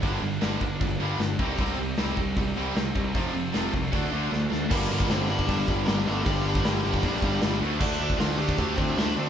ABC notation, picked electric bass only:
X:1
M:4/4
L:1/8
Q:1/4=154
K:Gm
V:1 name="Picked electric bass" clef=bass
G,,, G,,, G,,, G,,, G,,, G,,, G,,, C,, | C,, C,, C,, C,, C,, C,, C,, C,, | F,,, F,,, F,,, C,, D,, D,, D,, D,, | G,,, G,,, G,,, G,,, G,,, G,,, G,,, G,,, |
G,,,2 G,,, G,,, B,,, G,,, G,,, D,, | D,, D,, D,, D,, D,, D,, D,, D,, |]